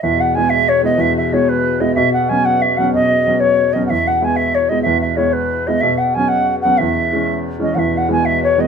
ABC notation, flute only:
X:1
M:6/8
L:1/16
Q:3/8=124
K:E
V:1 name="Flute"
e2 f2 g2 e2 c2 d2 | e2 e2 c2 B4 d2 | e2 f2 g2 f2 e2 f2 | d6 c4 d3/2 f/2 |
e2 f2 g2 e2 c2 d2 | e2 e2 c2 B4 d2 | e2 f2 g2 f3 z f2 | e8- e2 d3/2 f/2 |
e2 f2 g2 e2 c2 d2 |]